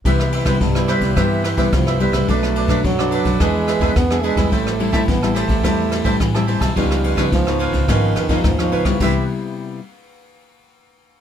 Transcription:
<<
  \new Staff \with { instrumentName = "Cavaquinho" } { \time 4/4 \key c \major \tempo 4 = 107 <g' b' c'' e''>8 <g' b' c'' e''>16 <g' b' c'' e''>16 r16 <b' c'' e''>16 <g' b' c'' e''>8 <g' b' c'' e''>8 <g' b' c'' e''>16 <g' b' c'' e''>16 r16 <b' c'' e''>16 <g' b' c'' e''>16 <b' c'' e''>16 | <d' a' b' d''>8 <d' a' b' d''>16 <d' a' b' d''>16 r16 <a' b' d''>16 <d' a' b' d''>8 <d' gis' b' e''>8 <d' gis' b' e''>16 <d' gis' b' e''>16 r16 <gis' b' e''>16 <d' gis' b' e''>16 <gis' b' e''>16 | <g' c'' e'' a''>8 <g' c'' e'' a''>16 <g' c'' e'' a''>16 r16 <c'' e'' a''>16 <g' c'' e'' a''>8 <g' c'' e'' a''>8 <g' c'' e'' a''>16 <g' c'' e'' a''>16 r16 <c'' e'' a''>16 <g' c'' e'' a''>16 <c'' e'' a''>16 | <f' ces'' des'' f''>8 <f' ces'' des'' f''>16 <f' ces'' des'' f''>16 r16 <ces'' des'' f''>16 <f' ces'' des'' f''>8 <f' ces'' des'' f''>8 <f' ces'' des'' f''>16 <f' ces'' des'' f''>16 r16 <ces'' des'' f''>16 <f' ces'' des'' f''>16 <ces'' des'' f''>16 |
<g' b' c'' e''>8 r2. r8 | }
  \new Staff \with { instrumentName = "Nylon-string guitar" } { \time 4/4 \key c \major << { <g b e'>8. <g b e'>8 <g b e'>8. <g b e'>8 r16 <g b e'>8. <g b e'>16 r16 | <fis a d'>8. <fis a d'>8 <fis a d'>8. <b d' gis'>8. <b d' gis'>8 <b d' gis'>8 <g c' e'>16~ | <g c' e'>8 <g c' e'>16 <g c' e'>8 <g c' e'>8. <g c' e'>8. <g c' e'>8 <g c' e'>16 <g c' e'>8 | <f ces' ees'>8. <f ces' ees'>8 <f ces' ees'>8. <f ces' ees'>8. <f ces' ees'>8 <f ces' ees'>8 <g ces' e'>16~ |
<g ces' e'>8. r2. r16 | } \\ { c4 g,4 c4 g,4 | b,4 fis,4 e4 b,4 | a,4 e4 a,4 e4 | des4 aes,4 des4 aes,4 |
<c g b e'>8 r2. r8 | } >> }
  \new Staff \with { instrumentName = "Trombone" } { \clef bass \time 4/4 \key c \major e4 g4 e4 f8 g8 | a4 fis4 gis4 b8 gis8 | a4 b8 a2 r8 | g4 f4 ees8.~ ees32 g32 f4 |
e8 r2. r8 | }
  \new Staff \with { instrumentName = "Upright bass" } { \clef bass \time 4/4 \key c \major c,8. c16 c,8. c,16 g,8. c,16 c,8. c,16 | b,,8. b,16 b,,8. b,,16 e,8. e,16 e,8. e,16 | a,,8. a,16 a,,8. a,,16 e,8. a,,16 a,,8. b,,16 | des,8. des16 des,8. des,16 aes,,8 f,8 ees,8 des,8 |
c,8 r2. r8 | }
  \new DrumStaff \with { instrumentName = "Drums" } \drummode { \time 4/4 <bd cymr>16 ss16 cymr16 <bd cymr ss>16 <bd cymr>16 ss16 <cymr ss>16 <bd cymr>16 <bd cymr ss>8 <cymr ss>16 <bd cymr>16 <bd cymr ss>16 ss16 cymr16 <bd cymr ss>16 | <bd cymr>16 ss16 cymr16 <bd cymr ss>16 <bd cymr>16 ss16 cymr16 <bd cymr>16 <bd cymr ss>8 <cymr ss>16 <bd cymr>16 <bd cymr ss>16 ss16 cymr16 <bd cymr ss>16 | <bd cymr>16 ss16 cymr16 <bd cymr ss>16 <bd cymr>16 ss16 <cymr ss>16 <bd cymr>16 <bd cymr ss>8 <cymr ss>16 <bd cymr>16 <bd cymr ss>16 ss16 cymr16 <bd cymr ss>16 | <bd cymr>16 ss16 cymr16 <bd cymr ss>16 <bd cymr>16 ss16 cymr16 <bd cymr>16 <bd cymr ss>8 <cymr ss>16 <bd cymr>16 <bd cymr ss>16 ss16 cymr16 <bd cymr ss>16 |
<cymc bd>4 r4 r4 r4 | }
>>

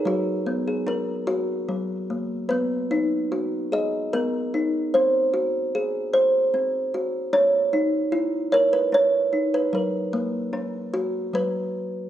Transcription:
\new Staff \with { instrumentName = "Kalimba" } { \time 3/4 \key b \major \tempo 4 = 74 << { fis'8. gis'16 ais'4. r8 | b'4. gis'8 ais'4 | bis'4 r2 | cis''4. ais'16 b'16 cis''8. b'16 |
ais'2 b'4 | } \\ { fis8 b8 cis'8 fis'8 fis8 ais8 | b8 dis'8 fis'8 dis''8 b8 dis'8 | bis8 fis'8 gis'8 bis'8 bis8 fis'8 | cis'8 dis'8 e'8 cis''8 cis'8 dis'8 |
fis8 ais8 cis'8 fis'8 fis4 | } >> }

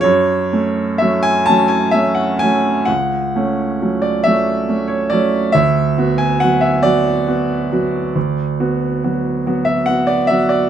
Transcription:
<<
  \new Staff \with { instrumentName = "Grand piano" } { \time 12/8 \key fis \minor \tempo 4. = 46 cis''4 e''16 gis''16 a''16 gis''16 e''16 fis''16 gis''8 fis''4~ fis''16 d''16 e''8. cis''16 d''8 | e''8. gis''16 fis''16 e''16 d''2.~ d''16 e''16 fis''16 d''16 e''16 d''16 | }
  \new Staff \with { instrumentName = "Grand piano" } { \time 12/8 \key fis \minor fis,8 <a cis'>8 <fis a cis'>8 <fis a cis'>8 <a cis'>8 <fis a cis'>8 cis,8 <a cis'>8 <fis a cis'>8 <fis a cis'>8 <a cis'>8 <fis a cis'>8 | d,8 <b fis'>8 <fis b fis'>8 <fis b fis'>8 <b fis'>8 <fis b fis'>8 d,8 <b fis'>8 <fis b fis'>8 <fis b fis'>8 <b fis'>8 <fis b fis'>8 | }
>>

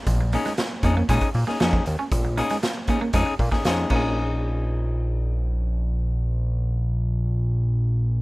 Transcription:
<<
  \new Staff \with { instrumentName = "Clean electric guitar" } { \time 4/4 \key bes \minor \tempo 4 = 117 r8 <des' ees' aes'>16 r8. <des' ees' aes'>16 r16 <des' ees' aes'>16 r8 <des' ees' aes'>16 <des' ees' aes'>8 r8 | r8 <des' ees' aes'>16 r8. <des' ees' aes'>16 r16 <des' ees' aes'>16 r8 <des' ees' aes'>16 <des' ees' aes'>8 <des' ees' aes'>8~ | <des' ees' aes'>1~ | <des' ees' aes'>1 | }
  \new Staff \with { instrumentName = "Clean electric guitar" } { \time 4/4 \key bes \minor r8 bes16 aes16 r8 bes16 bes16 aes16 r8 bes16 bes16 r8 des'16 | r8 bes16 aes16 r8 bes16 bes16 aes16 r8 bes16 r8 bes8~ | bes8 r2. r8 | r1 | }
  \new Staff \with { instrumentName = "Analog synth bass" } { \clef bass \time 4/4 \key bes \minor bes,,8. r8. f,8 bes,16 r16 bes,16 r16 f,8 ees,16 r16 | bes,,8. r4 r16 f,16 r16 bes,16 r16 f,8 bes,,8~ | bes,,1~ | bes,,1 | }
  \new DrumStaff \with { instrumentName = "Drums" } \drummode { \time 4/4 <hh bd>8 hh16 <hh sn>16 <hh sn>8 <hh bd>8 <hh bd>16 <hh bd>16 hho16 sn16 <hh sn>16 bd16 hh8 | <hh bd>8 hh16 <hh sn>16 <hh sn>8 <hh bd>8 <hh bd>8 <hho bd>16 <bd sn>16 <hh sn>8 <cymc bd>8 | r4 r4 r4 r4 | r4 r4 r4 r4 | }
>>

